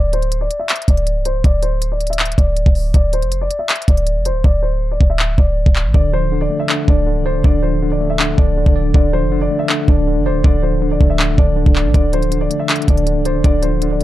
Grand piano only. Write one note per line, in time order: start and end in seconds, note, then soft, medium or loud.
0.00 0.11 D5 medium
0.13 0.40 C5 medium
0.41 0.58 D5 medium
0.59 0.86 E5 medium
0.89 1.24 D5 medium
1.26 1.42 C5 medium
1.45 1.61 D5 medium
1.63 1.89 C5 medium
1.92 2.08 D5 medium
2.10 2.36 E5 medium
2.38 2.91 D5 medium
2.95 3.11 D5 medium
3.13 3.40 C5 medium
3.41 3.58 D5 medium
3.59 3.86 E5 medium
3.89 4.24 D5 medium
4.26 4.42 C5 medium
4.44 4.61 D5 medium
4.63 4.89 C5 medium
4.91 5.08 D5 medium
5.10 5.36 E5 medium
5.38 5.91 D5 medium
5.94 6.11 D5 medium
6.13 6.40 C5 medium
6.41 6.58 D5 medium
6.60 6.86 E5 medium
6.89 7.24 D5 medium
7.26 7.42 C5 medium
7.45 7.61 D5 medium
7.63 7.89 C5 medium
7.92 8.08 D5 medium
8.10 8.36 E5 medium
8.38 8.91 D5 medium
8.95 9.11 D5 medium
9.13 9.40 C5 medium
9.41 9.58 D5 medium
9.59 9.86 E5 medium
9.89 10.24 D5 medium
10.26 10.42 C5 medium
10.44 10.61 D5 medium
10.63 10.89 C5 medium
10.91 11.08 D5 medium
11.10 11.36 E5 medium
11.38 11.91 D5 medium
11.94 12.11 D5 medium
12.13 12.40 C5 medium
12.41 12.58 D5 medium
12.59 12.86 E5 medium
12.89 13.24 D5 medium
13.26 13.42 C5 medium
13.45 13.61 D5 medium
13.62 13.89 C5 medium
13.92 14.04 D5 medium